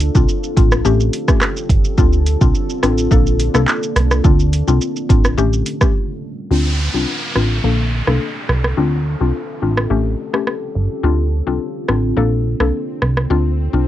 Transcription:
Already playing: D3 C4 F4 A4
0.00 closed hi-hat, shaker
0.15 C2 C4 D4 F4, kick, shaker
0.28 shaker
0.43 shaker
0.56 A1 C4 D4 F4, kick, closed hi-hat, shaker
0.71 cross-stick, shaker
0.85 A1 A3 C#4 G4 A4, shaker
1.00 shaker
1.13 closed hi-hat, shaker
1.28 A3 C#4 G4, kick, cross-stick, shaker
1.42 cross-stick, clap, shaker
1.57 shaker
1.70 G1, kick, closed hi-hat, shaker
1.85 shaker
1.98 D2 D3 C4 D4 F4, kick, shaker
2.13 shaker
2.27 closed hi-hat, shaker
2.41 C2 C4 D4 F4, kick, shaker
2.55 shaker
2.70 shaker
2.83 A1 C4 D4 F4, cross-stick, closed hi-hat, shaker
2.98 shaker
3.11 A#1 A#3 D4 A4, kick, shaker
3.27 shaker
3.40 closed hi-hat, shaker
3.54 C2 A#3 D4 A4, cross-stick, shaker
3.68 clap, shaker
3.83 shaker
3.96 C2, cross-stick, closed hi-hat, shaker
4.11 cross-stick, shaker
4.24 D2 D3 A3 C4 D4 F4, kick, shaker
4.40 shaker
4.53 closed hi-hat, shaker
4.68 C2 C4 D4 F4, shaker
4.81 shaker
4.96 shaker
5.09 A1 C4 D4 F4, kick, closed hi-hat, shaker
5.24 cross-stick, shaker
5.38 A1 G3 A3 C#4 G4, shaker
5.53 shaker
5.66 closed hi-hat, shaker
5.81 A3 C#4 G4, kick, cross-stick, shaker
6.51 D2 D3 C4 D4 F4 A4, downlifter
6.94 C2 C4 D4 F4
7.36 A1 C4 D4 F4, cross-stick
7.64 A#1 A#3 D4 A4
8.07 C2 A#3 D4 A4, cross-stick
8.49 C2, cross-stick
8.64 cross-stick
8.77 D2 D3 C4 D4 F4
9.20 C2 C4 D4 F4
9.62 A1 C4 D4 F4
9.77 cross-stick
9.90 A1 A3 C#4 G4
10.34 A3 C#4 G4, cross-stick
10.47 cross-stick
10.75 G1
11.03 D2 D3 C4 D4 F4, swell
11.47 C2 C4 D4 F4
11.88 A1 C4 D4 F4, cross-stick
12.17 A#1 A#3 D4 A4
12.60 C2 A#3 D4 A4, cross-stick
13.02 C2, cross-stick
13.17 cross-stick
13.30 D2 D3 C4 D4 F4
13.73 C2 C4 D4 F4

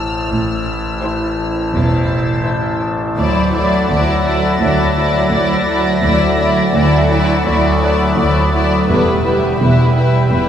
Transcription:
Already playing: A1 E4 C5 A5 E6 F6
0.30 A1 A2 E4 C5 A5
1.03 E3 E4 C5
1.74 E1 E2
2.46 E3 E4 C5
3.17 D2 F#3 E4 A4 D5 E5 F#5 A6
3.54 F#3 E4 D5
3.88 D2 F#3 E4 D5 A#6
4.24 F#3 E4 D5
4.59 D2 F#3 E4 D5
4.96 F#3 E4 D5
5.31 D2 F#3 E4 D5
5.68 F#3 E4 D5
6.01 D2 F#3 E4 A4 D5 E5 F#5
6.37 F#3 E4 D5
6.74 D2 F#3 E4 D5
7.10 F#3 E4 D5
7.36 A6
7.45 D2 F#3 E4 D5
7.81 F#3 E4 D5
8.17 D2 F#3 E4 D5
8.52 F#3 E4 D5
8.87 E1 E2 G3 E4 B4 E5 G5 B5
9.24 G3 E4 B4
9.58 E1 E2 G3 E4 B4
9.94 G3 E4 B4
10.31 E1 E2 G3 E4 B4

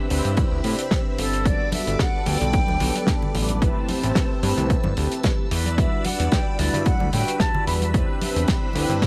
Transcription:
Already playing: C4 B5 E6
0.09 D2 C4 D4 E4 G4 B4, open hi-hat
0.25 G2, closed hi-hat
0.37 kick, closed hi-hat
0.52 D2
0.63 A2 C4 D4 E4 G4 B4, open hi-hat
0.79 closed hi-hat
0.91 kick, snare, closed hi-hat
1.18 G1 A4, open hi-hat
1.33 closed hi-hat
1.45 G3 D4 F#4 A4 B4 D5 D6, kick, closed hi-hat
1.72 E5, open hi-hat, high conga
1.87 G1, closed hi-hat
1.99 F#5, kick, snare, closed hi-hat
2.26 D2 F#3 G3 B3 D4 A4 G5, open hi-hat, high conga
2.41 B1, closed hi-hat, low conga
2.53 kick, closed hi-hat
2.68 D1, high conga
2.79 B1 F#3 G3 B3 D4 A4, open hi-hat, low conga
2.96 closed hi-hat
3.07 kick, snare, closed hi-hat, high conga
3.22 low conga
3.34 A1, open hi-hat
3.49 closed hi-hat, high conga
3.61 A3 C4 E4 G4 B4 A5 E6, kick, closed hi-hat
3.89 open hi-hat, high conga
4.03 A1, closed hi-hat
4.15 kick, snare, closed hi-hat
4.42 G2 A3 C4 E4 G4 B4, open hi-hat, high conga
4.57 C2, closed hi-hat, low conga
4.70 kick, closed hi-hat
4.84 G1, high conga, low conga
4.96 D2 A3 C4 E4 G4 B4, open hi-hat
5.12 closed hi-hat
5.23 kick, snare, closed hi-hat, high conga
5.50 E2 B4 D5 B5 E6, open hi-hat
5.64 closed hi-hat, high conga
5.77 G3 D4 E4 F#4 B4 E5, kick, closed hi-hat
6.04 F#5, open hi-hat, high conga
6.20 E2, closed hi-hat
6.31 G5, kick, snare, closed hi-hat
6.58 D2 G3 D4 E4 F#4 B4 D5, open hi-hat, high conga
6.73 G2, closed hi-hat, low conga
6.85 F#5, kick, closed hi-hat
7.00 D2, high conga
7.12 A2 G3 D4 E4 F#4 B4 G5, open hi-hat, low conga
7.28 closed hi-hat
7.39 A5, kick, snare, closed hi-hat, high conga
7.55 low conga
7.66 E2 B5, open hi-hat
7.82 closed hi-hat, high conga
7.94 C4 D4 E4 G4 B4, kick, closed hi-hat
8.21 open hi-hat, high conga
8.36 E2, closed hi-hat
8.48 kick, snare, closed hi-hat
8.73 D2 C4 D4 E4 G4 B4, open hi-hat, high conga
8.89 G2, closed hi-hat, low conga
9.02 kick, snare, closed hi-hat

